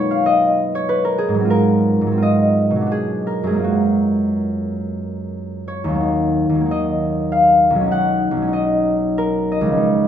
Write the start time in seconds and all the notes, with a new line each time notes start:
Already playing: B2 F#3 A#3 D#4 A#4 B4 C#5
0.11 F5
0.26 D#5
0.75 C#5
0.89 B4
1.05 A#4
1.18 G#4
1.29 G#2
1.34 F#3
1.40 C4
1.45 F4
1.50 A#4
2.01 G#2
2.07 F#3
2.12 C4
2.18 F4
2.22 D#5
2.71 B2
2.76 F#3
2.81 D4
2.87 F#4
2.92 G#4
3.27 A#4
3.43 F#2 G#4
3.49 G#3
3.54 A#3
3.59 F4
3.64 F#4
5.68 C#5
5.84 D#2
5.90 F#3
5.95 A#3
6.00 D#4
6.49 D#2
6.55 F#3
6.60 A#3
6.66 D#4
6.71 D#5
7.32 F5
7.70 B1
7.75 F#3
7.81 C#4
7.87 D#4
7.92 F#5
8.31 B1
8.37 F#3
8.42 C#4
8.47 D#4
8.53 D#5
9.18 A#4
9.52 D#5
9.61 C#2
9.66 F3
9.72 C#4
9.77 D#4